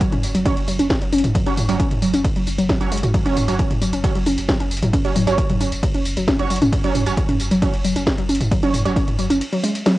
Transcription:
0.01 F#3, kick, closed hi-hat, ride, tambourine
0.12 F#1 C#4, closed hi-hat, mid tom
0.23 F#1, open hi-hat, tambourine
0.35 F#1 F#3, closed hi-hat, tambourine
0.45 F#3 C#4 C#5, kick, closed hi-hat, ride, tambourine
0.57 F#1, closed hi-hat
0.68 F#1 F#3, open hi-hat, tambourine
0.79 F#1 C#4, closed hi-hat, tambourine
0.90 kick, snare, ride
1.02 F#1 F#3, closed hi-hat
1.13 F#1 C#4, open hi-hat, tambourine
1.18 closed hi-hat
1.24 F#1, closed hi-hat, mid tom, tambourine
1.35 F#3, kick, closed hi-hat, ride, tambourine
1.47 F#1 F#3 C#4 C#5, closed hi-hat
1.58 F#1, mid tom, open hi-hat, tambourine
1.69 F#1 F#3 C#4 C#5, closed hi-hat, tambourine
1.80 C#4, kick, closed hi-hat, ride, tambourine
1.91 F#1, closed hi-hat, mid tom
2.02 F#1 F#3, open hi-hat, tambourine
2.14 F#1 C#4, closed hi-hat, tambourine
2.25 kick, closed hi-hat, ride, tambourine
2.36 F#1 F#3, closed hi-hat
2.47 F#1, open hi-hat, tambourine
2.59 F#1 F#3, closed hi-hat, tambourine
2.69 F#3, kick, snare, ride
2.81 F#1 F#3 C#4 C#5, closed hi-hat
2.92 F#1 G#3, open hi-hat, tambourine
2.98 closed hi-hat
3.03 F#1 F#4, closed hi-hat, mid tom, tambourine
3.14 F#3, kick, closed hi-hat, ride, tambourine
3.26 F#1 F#3 C#4 C#5, closed hi-hat
3.37 F#1, mid tom, open hi-hat, tambourine
3.48 F#1 F#3 C#4 C#5, closed hi-hat, tambourine
3.59 C#4, kick, closed hi-hat, ride
3.70 F#1, closed hi-hat, mid tom
3.81 F#1 F#3, open hi-hat, tambourine
3.93 F#1 C#4, closed hi-hat, tambourine
4.04 F#3 C#4 C#5, kick, closed hi-hat, ride, tambourine
4.15 F#1 F#3, closed hi-hat
4.26 F#1 C#4, open hi-hat, tambourine
4.38 F#1, closed hi-hat, tambourine
4.49 F#3, kick, snare, ride, tambourine
4.60 F#1 C#4, closed hi-hat
4.71 F#1, open hi-hat, tambourine
4.77 closed hi-hat
4.82 F#1 F#3, closed hi-hat, mid tom, tambourine
4.93 C#4, kick, closed hi-hat, ride, tambourine
5.05 F#1 F#3 C#4 C#5, closed hi-hat
5.16 F#1 F#3, mid tom, open hi-hat, tambourine
5.27 F#1 F#3 C#4 C#5, closed hi-hat, tambourine
5.38 kick, closed hi-hat, ride, tambourine
5.50 F#1 F#3, closed hi-hat, mid tom
5.61 F#1 C#4, open hi-hat, tambourine
5.72 F#1, closed hi-hat, tambourine
5.83 F#3, kick, closed hi-hat, ride
5.94 F#1 C#4, closed hi-hat
6.05 F#1, open hi-hat, tambourine
6.17 F#1 F#3, closed hi-hat, tambourine
6.28 C#4, kick, snare, ride, tambourine
6.39 F#1 F#3 C#4 C#5, closed hi-hat
6.50 F#1 F#3, open hi-hat, tambourine
6.56 closed hi-hat
6.61 F#1 C#4, closed hi-hat, mid tom, tambourine
6.72 kick, closed hi-hat, ride, tambourine
6.84 F#1 F#3 C#4 C#5, closed hi-hat
6.95 F#1 C#4, mid tom, open hi-hat, tambourine
7.06 F#1 F#3 C#4 C#5, closed hi-hat, tambourine
7.17 F#3, kick, closed hi-hat, ride
7.29 F#1 C#4, closed hi-hat, mid tom
7.40 F#1, open hi-hat, tambourine
7.51 F#1 F#3, closed hi-hat, tambourine
7.62 F#3 C#4 C#5, kick, closed hi-hat, ride, tambourine
7.73 F#1, closed hi-hat
7.84 F#1 F#3, open hi-hat, tambourine
7.96 F#1 C#4, closed hi-hat, tambourine
8.07 kick, snare, ride, tambourine
8.18 F#1 F#3, closed hi-hat
8.29 F#1 C#4, open hi-hat, tambourine
8.35 closed hi-hat
8.41 F#1, closed hi-hat, mid tom, tambourine
8.51 F#3, kick, closed hi-hat, ride, tambourine
8.63 F#1 F#3 C#4 C#5, closed hi-hat
8.74 F#1, mid tom, open hi-hat, tambourine
8.85 F#1 F#3 C#4 C#5, closed hi-hat, tambourine
8.96 C#4, kick, closed hi-hat, ride, tambourine
9.08 F#1, closed hi-hat, mid tom
9.19 F#1 F#3, open hi-hat, tambourine
9.30 F#1 C#4, closed hi-hat, tambourine
9.41 closed hi-hat, ride, tambourine
9.53 F#3, closed hi-hat
9.64 G#3, open hi-hat, tambourine
9.75 closed hi-hat, tambourine
9.86 F#3, snare, open hi-hat, ride, tambourine

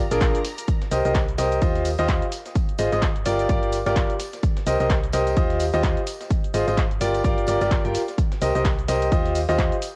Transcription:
Already playing: A#5
0.11 A#1 D4 F4 G#4 A#4, closed hi-hat, tambourine, cabasa
0.21 kick, snare, clap, closed hi-hat, tambourine, cabasa
0.35 closed hi-hat, cabasa
0.44 snare, closed hi-hat, open hi-hat, tambourine
0.58 closed hi-hat, tambourine, cabasa
0.68 kick, closed hi-hat, cabasa
0.82 snare, closed hi-hat, cabasa
0.91 C2 G4 A#4 C5 D#5, closed hi-hat, open hi-hat, tambourine, cabasa
1.05 C2 G4 A#4 C5 D#5, closed hi-hat, tambourine, cabasa
1.14 kick, snare, clap, closed hi-hat, tambourine, cabasa
1.28 closed hi-hat, cabasa
1.38 C2 G4 A#4 C5 D#5, snare, closed hi-hat, open hi-hat, tambourine, cabasa
1.52 closed hi-hat, tambourine, cabasa
1.61 D#2 F4 G4 C5 D#5, kick, closed hi-hat, tambourine, cabasa
1.75 snare, closed hi-hat, cabasa
1.85 open hi-hat, tambourine, cabasa
1.98 D#2 F4 G4 C5 D#5, closed hi-hat, tambourine, cabasa
2.09 kick, snare, clap, closed hi-hat, tambourine, cabasa
2.22 closed hi-hat, cabasa
2.32 closed hi-hat, open hi-hat, tambourine, cabasa
2.46 snare, closed hi-hat, tambourine, cabasa
2.55 kick, closed hi-hat, tambourine, cabasa
2.69 closed hi-hat, cabasa
2.78 G#1 F4 G#4 C5 D#5, closed hi-hat, open hi-hat, tambourine, cabasa
2.92 G#1 F4 G#4 C5 D#5, closed hi-hat, tambourine, cabasa
3.02 kick, snare, clap, closed hi-hat, tambourine, cabasa
3.16 closed hi-hat, cabasa
3.26 G1 F4 G4 A#4 D5, closed hi-hat, open hi-hat, tambourine, cabasa
3.39 closed hi-hat, tambourine, cabasa
3.49 G1 F4 G4 A#4 D5, kick, closed hi-hat, tambourine, cabasa
3.63 closed hi-hat, cabasa
3.72 closed hi-hat, open hi-hat, tambourine, cabasa
3.86 G1 F4 G4 A#4 D5, closed hi-hat, tambourine, cabasa
3.96 kick, snare, clap, closed hi-hat, tambourine, cabasa
4.10 closed hi-hat, cabasa
4.20 snare, closed hi-hat, open hi-hat, tambourine, cabasa
4.33 snare, closed hi-hat, tambourine, cabasa
4.43 kick, closed hi-hat, tambourine, cabasa
4.57 snare, closed hi-hat, cabasa
4.66 C2 G4 A#4 C5 D#5, closed hi-hat, open hi-hat, tambourine, cabasa
4.80 C2 G4 A#4 C5 D#5, closed hi-hat, tambourine, cabasa
4.90 kick, snare, clap, closed hi-hat, cabasa
5.04 closed hi-hat, cabasa
5.12 C2 G4 A#4 C5 D#5, snare, closed hi-hat, open hi-hat, tambourine, cabasa
5.27 closed hi-hat, tambourine, cabasa
5.37 D#2 F4 G4 C5 D#5, kick, closed hi-hat, tambourine, cabasa
5.50 snare, closed hi-hat, cabasa
5.60 open hi-hat, tambourine, cabasa
5.73 D#2 F4 G4 C5 D#5, closed hi-hat, tambourine, cabasa
5.83 kick, snare, clap, closed hi-hat, tambourine, cabasa
5.97 closed hi-hat, cabasa
6.07 closed hi-hat, open hi-hat, tambourine, cabasa
6.21 snare, closed hi-hat, tambourine, cabasa
6.30 kick, closed hi-hat, tambourine, cabasa
6.44 closed hi-hat, cabasa
6.54 G#1 F4 G#4 C5 D#5, closed hi-hat, open hi-hat, tambourine, cabasa
6.68 G#1 F4 G#4 C5 D#5, closed hi-hat, tambourine, cabasa
6.77 kick, snare, clap, closed hi-hat, cabasa
6.91 closed hi-hat, cabasa
7.01 G1 F4 G4 A#4 D5, closed hi-hat, open hi-hat, tambourine, cabasa
7.14 closed hi-hat, tambourine, cabasa
7.24 G1 F4 G4 A#4 D5, kick, closed hi-hat, tambourine, cabasa
7.38 closed hi-hat, cabasa
7.47 G1 F4 G4 A#4 D5, closed hi-hat, open hi-hat, tambourine, cabasa
7.61 G1 F4 G4 A#4 D5, closed hi-hat, tambourine, cabasa
7.71 kick, snare, clap, closed hi-hat, tambourine, cabasa
7.85 G1 F4 G4 A#4 G5, closed hi-hat, cabasa
7.95 snare, closed hi-hat, open hi-hat, tambourine, cabasa
8.08 snare, closed hi-hat, tambourine, cabasa
8.18 kick, closed hi-hat, tambourine, cabasa
8.32 snare, closed hi-hat, cabasa
8.41 C2 G4 A#4 C5 D#5, closed hi-hat, open hi-hat, tambourine, cabasa
8.55 C2 G4 A#4 C5 D#5, closed hi-hat, tambourine, cabasa
8.65 kick, snare, clap, closed hi-hat, tambourine, cabasa
8.79 closed hi-hat, cabasa
8.88 C2 G4 A#4 C5 D#5, snare, closed hi-hat, open hi-hat, tambourine, cabasa
9.02 closed hi-hat, tambourine, cabasa
9.12 D#2 F4 G4 C5 D#5, kick, closed hi-hat, tambourine, cabasa
9.25 snare, closed hi-hat, cabasa
9.35 open hi-hat, tambourine, cabasa
9.49 D#2 F4 G4 C5 D#5, closed hi-hat, tambourine, cabasa
9.59 kick, snare, clap, closed hi-hat, cabasa
9.72 closed hi-hat, cabasa
9.82 closed hi-hat, open hi-hat, tambourine, cabasa

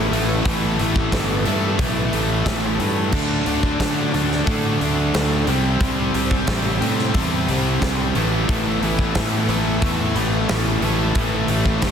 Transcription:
Already playing: A1 A2 E3 A3 B3 E4 A4 B4 A5 E6
0.11 A1 A2 E3 A3 B3 E4, open hi-hat
0.15 A4
0.45 A1 A2 E3 A3, kick, open hi-hat
0.79 A1 A2 E3 A3, open hi-hat
0.96 kick
1.11 G1 A2 E3 A3, kick, snare, open hi-hat
1.45 G2 A2 E3 A3 B3 E4 A4, open hi-hat
1.79 B1 A2 E3 A3, kick, open hi-hat
2.12 A1 A2 E3 A3, open hi-hat
2.45 A1 A2 E3 A3, kick, snare, open hi-hat
2.79 G2 A2 E3 A3, open hi-hat
3.12 D2 D3 F#3 A3 D4 A4 D5 F#5, kick, crash
3.46 D2 D3 A3 D4, open hi-hat
3.63 kick
3.80 D3 A3 D4, kick, snare, open hi-hat
4.13 D2 D3 A3 D4, open hi-hat
4.32 snare
4.45 A2 D3 F#3 A3 D4 A4, kick, open hi-hat
4.79 D2 D3 A3 D4, open hi-hat
5.14 D2 D3 A3 D4, snare, open hi-hat
5.46 C2 C3 G3 C4 E4 C5 A5, open hi-hat
5.50 G4
5.80 C2 C3 G3 C4, kick, open hi-hat
6.14 C2 C3 G3 C4, open hi-hat
6.31 kick
6.47 A1 C3 G3 C4, kick, snare, open hi-hat
6.80 A2 C3 G3 C4 E4 G4, open hi-hat
6.99 snare
7.14 E2 C3 G3 C4, kick, open hi-hat
7.47 C2 C3 G3 C4, open hi-hat
7.81 C2 C3 G3 C4, kick, snare, open hi-hat
8.15 A1 A2 E3 A3 B3 E4 A4 B4 A5 E6, open hi-hat
8.48 A1 A2 E3 A3, kick, open hi-hat
8.81 A1 A2 E3 A3, open hi-hat
8.99 kick
9.15 A2 E3 A3, kick, snare, open hi-hat
9.48 A1 A2 E3 A3 B3 E4 A4, open hi-hat
9.81 E2 A2 E3 A3, kick, open hi-hat
10.15 A1 A2 E3 A3, open hi-hat
10.48 A1 A2 E3 A3, snare, open hi-hat
10.81 A1 A2 E3 A3 B3 E4 A4, open hi-hat
11.15 A1 A2 E3 A3, kick, open hi-hat
11.48 A1 A2 E3 A3, open hi-hat
11.66 kick
11.82 G1 A2 E3 A3, kick, snare, open hi-hat

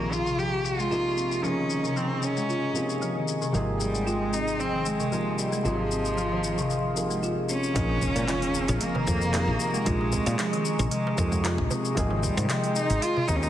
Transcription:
Already playing: A#1 C3 F3 A#3 D#4 G#4 F5 A#5 C#6
0.00 D#3
0.13 F4, shaker
0.26 C3, shaker
0.38 F3 G4, shaker
0.65 F4, shaker
0.79 G#3, shaker
0.90 C3 F3 A#3 D#4 F4 G#4, shaker
1.17 C4, shaker
1.32 shaker
1.42 C#3 F3 A#3 C#4 D#4 D#5, shaker
1.46 G#4
1.57 D#3
1.70 shaker
1.84 C3, shaker
1.96 F3 C4, shaker
2.23 C#4, shaker
2.37 G#3, shaker
2.49 F4, shaker
2.73 C3 F3 A#3 C4 D#4, shaker
2.77 G#4
2.90 shaker
3.02 F3, shaker
3.15 D#3
3.28 shaker
3.42 C3, shaker
3.52 G#1 C3 F3 A#3 D#4 G5 C6, shaker
3.56 G#4
3.81 G3, shaker
3.94 G#3, shaker
4.07 G#3 F4, shaker
4.33 C4 D#4, shaker
4.48 shaker
4.59 F3 C4, shaker
4.73 D#3
4.86 G#3, shaker
5.00 C3, shaker
5.11 C3 F3 A#3 D#4 G#4, shaker
5.39 G3, shaker
5.53 G#3, shaker
5.63 G#1 C3 F3 A#3 D#4 F4 G#4 F5, shaker
5.92 C4, shaker
6.05 shaker
6.18 F3, shaker
6.32 D#3
6.44 shaker
6.58 C3, shaker
6.70 F3, shaker
6.95 C3 F3 A#3 D#4 G#4, shaker
7.10 G#3, shaker
7.23 F4, shaker
7.49 C4 C#4, shaker
7.63 shaker
7.74 A#1 C#3 F3 A#3 D#4 G#4 F5 A#5 C#6, kick, open hi-hat, impact, shaker
7.89 darbuka ka
8.02 kick, darbuka dum, shaker
8.16 A#2 G#3, open hi-hat, shaker
8.28 F4, clap, open hi-hat, shaker
8.42 open hi-hat
8.55 C4, shaker
8.68 A#1, open hi-hat, darbuka ka, darbuka tek, shaker
8.80 F3 A#3, open hi-hat, shaker
8.95 D#3, darbuka tek, darbuka dum
9.07 F2, kick, darbuka tek, shaker
9.21 C3, shaker
9.33 C3 F3 A#3 D#4 G#4, clap, open hi-hat, shaker
9.47 A#1
9.60 shaker
9.74 G#3, shaker
9.84 A#1 C3 F3 G#3 A#3 D#4 F4 G#4 D#5, kick, open hi-hat, shaker
10.01 darbuka ka
10.12 C4, kick, darbuka dum, shaker
10.26 A#2, open hi-hat, shaker
10.39 F3, clap, open hi-hat, shaker
10.53 D#3, open hi-hat
10.65 shaker
10.79 A#1 C3, open hi-hat, darbuka ka, darbuka tek, shaker
10.91 F3 G#3, open hi-hat, shaker
11.07 darbuka tek
11.16 F2 C3 F3 A#3 D#4, kick, darbuka ka, shaker
11.20 G#4
11.31 G#3, kick, shaker
11.44 F4, clap, open hi-hat, shaker
11.58 A#1, kick
11.70 C4, darbuka ka, darbuka dum, shaker
11.85 shaker
11.95 G#1 C3 F3 A#3 D#4 G5 C6, kick, open hi-hat, shaker
11.99 G#4
12.11 D#3, darbuka ka
12.23 G3, kick, darbuka dum, shaker
12.37 G#2 C3, open hi-hat, shaker
12.49 F3 G#3, clap, open hi-hat, shaker
12.64 open hi-hat
12.76 D#4, shaker
12.89 G#1 G#3, open hi-hat, darbuka ka, darbuka tek, shaker
13.02 F4, open hi-hat, shaker
13.17 darbuka tek, darbuka dum
13.28 D#2 C4 D#4, kick, darbuka tek, shaker
13.36 C#4
13.43 D#4, shaker

